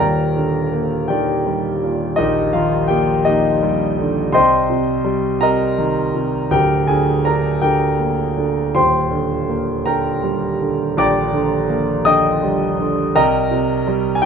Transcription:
0.00 2.15 D#1 medium
0.00 2.15 D#2 medium
0.00 1.07 A#4 medium
0.00 1.07 D5 medium
0.00 1.06 G5 medium
0.00 1.13 A#5 medium
0.37 1.79 D3 soft
0.73 2.15 A#3 soft
1.08 2.50 D#3 soft
1.08 2.15 G4 medium
1.08 2.15 D5 medium
1.08 2.13 G5 medium
1.46 2.86 G3 soft
1.83 3.23 A#2 soft
2.16 4.29 A#1 medium
2.16 2.52 D#4 medium
2.16 2.52 G4 medium
2.16 2.52 A#4 medium
2.16 2.54 D#5 medium
2.53 3.94 D#3 medium
2.53 2.88 F4 medium
2.53 2.87 F5 medium
2.88 4.30 A#3 medium
2.88 3.23 G4 medium
2.88 3.26 G5 medium
3.25 4.31 A#2 medium
3.25 4.03 D#4 medium
3.25 4.03 G4 medium
3.25 4.02 D#5 medium
3.63 4.32 G3 medium
3.99 4.33 D3 medium
4.32 6.47 C2 medium
4.32 5.38 C5 medium
4.32 5.38 D#5 medium
4.32 5.38 G5 medium
4.32 5.44 C6 medium
4.70 5.39 C3 medium
5.05 6.46 G3 medium
5.41 6.13 C3 medium
5.41 6.48 A#4 medium
5.41 6.47 D#5 medium
5.41 6.54 A#5 medium
5.78 6.49 D#3 soft
6.14 6.50 C3 soft
6.50 8.71 D1 medium
6.50 8.71 D2 medium
6.50 6.86 G4 medium
6.50 6.85 A#4 medium
6.50 6.89 G5 medium
6.87 7.60 D3 soft
6.87 7.23 G#4 medium
6.87 7.26 G#5 medium
7.25 8.71 D4 soft
7.25 7.61 A#4 medium
7.25 7.63 A#5 medium
7.61 8.36 D3 soft
7.61 8.43 G4 medium
7.61 8.43 A#4 medium
7.61 8.43 G5 medium
7.99 8.72 A#3 soft
8.37 8.74 D3 soft
8.75 10.94 D#1 medium
8.75 10.94 D#2 medium
8.75 9.83 C5 medium
8.75 9.83 G5 medium
8.75 9.90 C6 medium
9.11 9.85 D3 soft
9.49 10.93 A#3 medium
9.86 10.59 D3 soft
9.86 10.94 A#4 medium
9.86 10.94 G5 medium
9.86 10.93 A#5 medium
10.23 11.66 G3 medium
10.60 11.32 D3 soft
10.97 13.11 A#1 medium
10.97 12.04 D5 medium
10.97 12.03 G5 medium
10.97 12.03 A#5 medium
10.97 12.10 D6 loud
11.33 12.04 D3 medium
11.69 13.11 A#3 medium
12.05 12.78 D3 medium
12.05 12.84 D#5 medium
12.05 12.84 G5 medium
12.05 12.83 D#6 loud
12.43 13.13 G3 soft
12.79 13.14 D3 medium
13.15 14.25 C2 medium
13.15 13.83 A#4 medium
13.15 13.84 D#5 medium
13.15 13.83 G5 medium
13.15 13.83 A#5 loud
13.51 14.22 C3 medium
13.87 14.25 G3 medium
14.15 14.23 G#5 medium
14.22 14.25 G5 loud

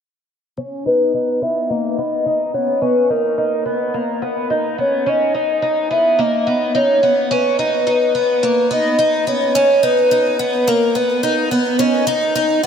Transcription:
0.58 0.85 C#4 medium
0.86 1.13 D#4 medium
0.86 1.44 B4 loud
1.14 1.41 D#4 medium
1.42 1.70 B3 medium
1.42 1.72 E5 loud
1.70 1.98 A#3 medium
1.70 2.56 D#5 loud
1.98 2.26 B3 medium
2.26 2.54 D#4 medium
2.54 2.81 B3 medium
2.54 2.81 C#5 medium
2.82 3.10 C#4 medium
2.82 3.12 B4 medium
3.10 3.36 D#4 medium
3.10 3.95 A#4 medium
3.38 3.65 D#4 medium
3.66 3.94 B3 medium
3.94 4.22 A#3 medium
4.22 4.50 B3 medium
4.50 4.78 D#4 medium
4.78 5.06 B3 medium
4.78 5.10 C#5 medium
5.06 5.34 C#4 medium
5.06 5.94 D#5 loud
5.35 5.61 D#4 medium
5.62 5.90 D#4 medium
5.91 6.19 B3 medium
5.91 6.22 E5 loud
6.19 6.47 A#3 medium
6.19 6.78 D#5 loud
6.47 6.74 B3 medium
6.75 7.03 D#4 medium
6.75 7.32 C#5 medium
7.03 7.31 B3 medium
7.31 7.58 C#4 medium
7.31 8.68 B4 medium
7.59 7.86 D#4 medium
7.87 8.14 D#4 medium
8.15 8.43 B3 medium
8.43 8.71 A#3 medium
8.71 8.98 B3 medium
8.71 9.24 D#5 loud
8.99 9.27 D#4 medium
9.27 9.55 B3 medium
9.27 9.85 C#5 loud
9.55 9.83 C#4 medium
9.83 10.10 D#4 medium
9.83 10.70 B4 loud
10.11 10.39 D#4 medium
10.39 10.67 B3 medium
10.67 10.95 A#3 medium
10.67 10.98 A#4 medium
10.95 11.23 B3 medium
10.95 11.52 B4 medium
11.23 11.51 D#4 medium
11.51 11.79 B3 medium
11.79 12.06 C#4 medium
11.79 12.60 D#5 loud
12.07 12.34 D#4 medium
12.35 12.63 D#4 medium
12.63 12.67 B3 medium
12.63 12.67 F#5 loud

